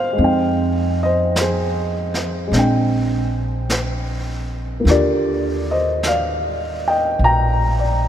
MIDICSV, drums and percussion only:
0, 0, Header, 1, 2, 480
1, 0, Start_track
1, 0, Tempo, 1169591
1, 79, Time_signature, 4, 2, 24, 8
1, 3317, End_track
2, 0, Start_track
2, 0, Title_t, "Drums"
2, 77, Note_on_c, 9, 25, 33
2, 557, Note_off_c, 9, 25, 0
2, 557, Note_on_c, 9, 25, 34
2, 557, Note_on_c, 9, 38, 39
2, 557, Note_on_c, 9, 44, 45
2, 598, Note_off_c, 9, 38, 0
2, 598, Note_off_c, 9, 44, 0
2, 878, Note_on_c, 9, 38, 23
2, 919, Note_off_c, 9, 38, 0
2, 1037, Note_off_c, 9, 25, 0
2, 1037, Note_on_c, 9, 25, 29
2, 1037, Note_on_c, 9, 38, 26
2, 1078, Note_off_c, 9, 38, 0
2, 1516, Note_off_c, 9, 25, 0
2, 1516, Note_on_c, 9, 25, 33
2, 1516, Note_on_c, 9, 38, 37
2, 1516, Note_on_c, 9, 44, 40
2, 1557, Note_off_c, 9, 38, 0
2, 1557, Note_off_c, 9, 44, 0
2, 1997, Note_off_c, 9, 25, 0
2, 1997, Note_on_c, 9, 25, 33
2, 1997, Note_on_c, 9, 38, 26
2, 2038, Note_off_c, 9, 38, 0
2, 2475, Note_off_c, 9, 25, 0
2, 2475, Note_on_c, 9, 25, 33
2, 2475, Note_on_c, 9, 38, 37
2, 2475, Note_on_c, 9, 44, 50
2, 2516, Note_off_c, 9, 38, 0
2, 2516, Note_off_c, 9, 44, 0
2, 2958, Note_off_c, 9, 25, 0
2, 2958, Note_on_c, 9, 25, 32
2, 3317, Note_off_c, 9, 25, 0
2, 3317, End_track
0, 0, End_of_file